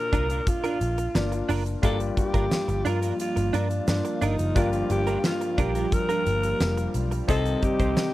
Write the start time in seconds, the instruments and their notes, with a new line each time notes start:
Already playing: grand piano A#2 A#3 D4 F4 D5, alto saxophone A#4
0.13 picked electric bass C2, clean electric guitar D4 F4 A#4, kick, closed hi-hat, shaker
0.30 clean electric guitar D4 F4 A#4, closed hi-hat, shaker
0.47 alto saxophone F4, muted clean electric guitar stroke, kick, closed hi-hat, shaker
0.64 clean electric guitar D4 F4 A#4, closed hi-hat, shaker
0.81 picked electric bass A#1, muted clean electric guitar stroke, closed hi-hat, shaker
0.98 muted clean electric guitar stroke, closed hi-hat, shaker
1.15 picked electric bass G1, grand piano A#3 D4 F4 D5, muted clean electric guitar stroke, snare, tambourine, shaker
1.32 muted clean electric guitar stroke, closed hi-hat, shaker
1.49 picked electric bass F#1, clean electric guitar D4 F4 A#4, open hi-hat, shaker
1.66 closed hi-hat, shaker
1.82 picked electric bass G1, grand piano G2 A#3 F4 G4 D5, analog synth pad F3 G3 A#3 F4, clean electric guitar D4 F4 A#4, alto saxophone A4, kick, closed hi-hat, shaker
2.00 muted clean electric guitar stroke, closed hi-hat, shaker
2.17 alto saxophone G4, muted clean electric guitar stroke, kick, closed hi-hat, shaker
2.34 picked electric bass G1, clean electric guitar D4 F4 A#4, kick, closed hi-hat, shaker
2.51 muted clean electric guitar stroke, snare, tambourine, shaker
2.68 picked electric bass G1, muted clean electric guitar stroke, closed hi-hat, shaker
2.85 picked electric bass G2, clean electric guitar D4 F4 A#4, alto saxophone F4, closed hi-hat, shaker
3.02 clean electric guitar D4 F4 A#4, closed hi-hat, shaker
3.19 alto saxophone F4, closed hi-hat, shaker
3.36 picked electric bass G1, muted clean electric guitar stroke, closed hi-hat, shaker
3.53 picked electric bass G2, clean electric guitar D4 F4 A#4, alto saxophone D4, closed hi-hat, shaker
3.70 closed hi-hat, shaker
3.88 picked electric bass G2, alto saxophone D4, muted clean electric guitar stroke, snare, tambourine, shaker
4.05 muted clean electric guitar stroke, closed hi-hat, shaker
4.21 picked electric bass G1, clean electric guitar D4 F4 A#4, alto saxophone D#4, closed hi-hat, shaker
4.39 picked electric bass F#1, closed hi-hat, shaker
4.55 picked electric bass G1, grand piano G2 A#3 F4 G4 D5, clean electric guitar D4 F4 A#4, alto saxophone F4, kick, closed hi-hat, shaker
4.73 muted clean electric guitar stroke, closed hi-hat, shaker
4.90 picked electric bass G1, alto saxophone G4, muted clean electric guitar stroke, closed hi-hat, shaker
5.07 clean electric guitar D4 F4 A#4, closed hi-hat, shaker
5.24 alto saxophone F4, muted clean electric guitar stroke, snare, tambourine, shaker
5.41 muted clean electric guitar stroke, closed hi-hat, shaker
5.58 picked electric bass A#1, clean electric guitar D4 F4 A#4, alto saxophone G4, kick, closed hi-hat, shaker
5.75 clean electric guitar D4 F4 A#4, closed hi-hat, shaker
5.92 alto saxophone A#4, muted clean electric guitar stroke, kick, closed hi-hat, shaker
6.09 clean electric guitar D4 F4 A#4, closed hi-hat, shaker
6.26 picked electric bass G1, muted clean electric guitar stroke, closed hi-hat, shaker
6.43 muted clean electric guitar stroke, closed hi-hat, shaker
6.60 picked electric bass F1, muted clean electric guitar stroke, snare, tambourine, shaker
6.77 muted clean electric guitar stroke, closed hi-hat, shaker
6.94 picked electric bass B1, closed hi-hat, shaker
7.11 muted clean electric guitar stroke, closed hi-hat, shaker
7.28 picked electric bass C2, grand piano C3 C4 D#4 G4 D#5, analog synth pad D#3 C4 G4, clean electric guitar D#4 G4 C5, alto saxophone A4, kick, closed hi-hat, shaker
7.45 closed hi-hat, shaker
7.62 alto saxophone G4, muted clean electric guitar stroke, kick, closed hi-hat, shaker
7.80 picked electric bass C2, clean electric guitar D#4 G4 C5, kick, closed hi-hat, shaker
7.97 muted clean electric guitar stroke, snare, tambourine, shaker